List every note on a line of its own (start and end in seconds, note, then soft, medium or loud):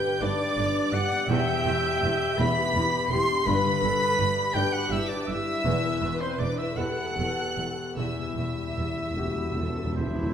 0.00 1.25 G2 medium
0.00 1.33 G2 medium
0.00 1.33 D3 medium
0.00 1.10 B3 medium
0.00 0.19 G4 loud
0.00 0.19 B4 loud
0.00 0.22 G5 loud
0.00 0.23 G5 loud
0.00 0.19 G6 loud
0.04 0.92 G4 medium
0.21 0.30 G1 medium
0.21 0.30 G2 medium
0.21 0.93 D4 loud
0.21 1.26 D4 medium
0.21 1.26 B4 medium
0.21 1.29 D5 loud
0.21 0.93 D5 loud
0.21 0.94 D5 loud
0.21 0.95 D5 loud
0.21 0.93 D6 loud
0.57 0.65 G1 medium
0.57 0.65 G2 medium
0.92 1.01 G1 medium
0.92 1.01 G2 medium
0.92 1.28 G4 loud
0.92 1.82 G4 medium
0.92 1.29 F#5 loud
0.92 1.30 F#5 loud
0.92 1.29 F#5 loud
0.92 1.29 F#6 loud
1.11 1.65 B3 medium
1.29 1.37 E1 loud
1.29 3.49 E2 loud
1.29 1.38 E2 loud
1.29 3.43 E2 medium
1.29 2.36 G4 loud
1.29 2.36 E5 loud
1.29 2.08 G5 loud
1.29 2.40 G5 loud
1.29 2.39 G5 loud
1.29 2.38 G6 loud
1.47 3.49 B2 medium
1.66 1.74 E1 medium
1.66 1.74 E2 medium
1.66 5.56 B3 medium
1.83 2.19 G4 medium
2.02 2.10 E1 medium
2.02 2.11 E2 medium
2.20 3.10 G4 medium
2.38 2.46 E1 loud
2.38 2.47 E2 loud
2.38 3.43 B3 medium
2.38 3.43 E4 medium
2.38 3.46 G4 loud
2.38 3.11 B4 loud
2.38 6.28 E5 medium
2.38 3.13 B5 loud
2.38 3.12 B5 loud
2.38 3.11 B5 loud
2.38 3.11 B6 loud
2.74 2.82 E1 medium
2.74 2.83 E2 medium
3.10 3.18 E1 medium
3.10 3.20 E2 medium
3.10 3.46 G4 loud
3.10 4.00 G4 medium
3.10 3.47 C6 loud
3.10 3.45 C6 loud
3.10 3.46 C7 loud
3.29 7.19 D4 medium
3.46 3.54 G1 loud
3.46 5.68 G2 loud
3.46 3.55 G2 loud
3.46 5.62 G2 medium
3.46 4.54 B4 loud
3.46 3.82 B4 loud
3.46 4.55 B5 loud
3.46 4.55 B6 loud
3.64 5.68 D3 medium
3.82 3.90 G1 medium
3.82 3.90 G2 medium
3.82 7.73 G3 medium
3.82 4.18 A4 medium
4.01 7.91 G4 medium
4.18 4.27 G1 medium
4.18 4.26 G2 medium
4.18 5.65 G4 loud
4.18 8.09 D5 medium
4.53 4.63 G1 medium
4.53 4.63 G2 loud
4.53 5.61 D4 medium
4.53 4.73 G4 loud
4.53 5.62 B4 medium
4.53 4.73 G5 loud
4.53 4.74 G5 loud
4.53 4.73 G6 loud
4.72 4.91 F#4 medium
4.72 4.92 F#5 loud
4.72 4.93 F#5 medium
4.72 4.92 F#5 medium
4.72 6.96 B5 medium
4.72 4.92 F#6 loud
4.90 5.00 G1 medium
4.90 5.00 G2 medium
4.90 5.10 E4 loud
4.90 5.10 E5 loud
4.90 5.11 E5 loud
4.90 5.10 E6 loud
5.08 5.29 D4 medium
5.08 5.29 D5 medium
5.08 5.28 D6 loud
5.27 5.37 G1 medium
5.27 5.36 G2 medium
5.27 6.19 E4 loud
5.27 6.22 E5 loud
5.27 6.19 E5 loud
5.27 6.21 E5 loud
5.27 6.20 E6 loud
5.64 5.73 E1 loud
5.64 7.93 E2 medium
5.64 5.73 E2 medium
5.64 7.97 E2 medium
5.64 6.75 B4 loud
5.84 8.00 B2 medium
6.02 6.11 E1 medium
6.02 6.10 E2 medium
6.19 6.40 C4 medium
6.19 6.40 C5 medium
6.19 6.41 C5 medium
6.19 6.40 C5 medium
6.19 6.39 C6 medium
6.38 6.48 E1 medium
6.38 6.48 E2 medium
6.38 6.59 D4 medium
6.38 6.59 D5 medium
6.38 6.60 D5 medium
6.38 6.59 D5 medium
6.38 6.59 D6 loud
6.58 6.78 E4 medium
6.58 6.78 E5 medium
6.58 6.79 E5 medium
6.58 6.78 E5 medium
6.58 6.78 E6 medium
6.76 6.86 E1 medium
6.76 6.87 E2 medium
6.76 7.92 E4 medium
6.76 7.97 G4 medium
6.76 7.97 A4 medium
6.76 7.93 B4 medium
6.76 7.66 F#5 medium
6.76 7.97 F#5 medium
6.76 7.97 F#6 loud
6.97 9.36 B5 medium
7.17 7.25 E1 medium
7.17 7.26 E2 medium
7.57 7.65 E1 medium
7.57 7.65 E2 medium
7.96 8.05 E1 medium
7.96 8.05 E2 medium
7.96 8.04 E2 soft
7.96 10.32 E2 medium
7.96 10.34 E2 medium
7.96 9.80 E4 medium
7.96 9.09 G4 medium
7.96 9.93 E5 medium
7.96 9.94 E6 medium
8.05 8.12 E2 soft
8.13 8.21 E2 soft
8.18 8.29 E2 soft
8.18 10.34 B2 soft
8.30 8.36 E2 soft
8.37 8.45 E1 medium
8.37 8.45 E2 soft
8.37 8.46 E2 medium
8.46 8.52 E2 soft
8.53 8.61 E2 soft
8.62 8.68 E2 medium
8.69 8.77 E2 soft
8.78 8.86 E1 medium
8.78 8.86 E2 medium
8.78 8.85 E2 medium
8.86 8.93 E2 medium
8.94 9.01 E2 medium
9.02 9.09 E2 medium
9.11 9.18 E2 medium
9.17 9.25 E1 medium
9.17 9.25 E2 medium
9.17 9.26 E2 medium
9.17 10.32 F#4 soft
9.17 9.55 G4 medium
9.17 10.32 G4 soft
9.27 9.33 E2 medium
9.35 9.42 E2 medium
9.35 10.34 B5 medium
9.43 9.50 E2 medium
9.51 9.58 E2 medium
9.58 9.66 E1 medium
9.58 9.66 E2 medium
9.58 9.97 A4 medium
9.67 9.75 E2 medium
9.76 9.83 E2 medium
9.84 9.91 E2 loud
9.92 9.99 E2 loud
9.92 10.34 E5 medium
9.96 10.05 E1 medium
9.96 10.06 E2 medium
9.96 10.06 E2 loud
9.96 10.34 E4 medium
9.96 10.34 G4 medium
9.96 10.34 C5 medium
9.96 10.34 E5 medium
10.07 10.14 E2 loud
10.15 10.22 E2 loud
10.23 10.30 E2 loud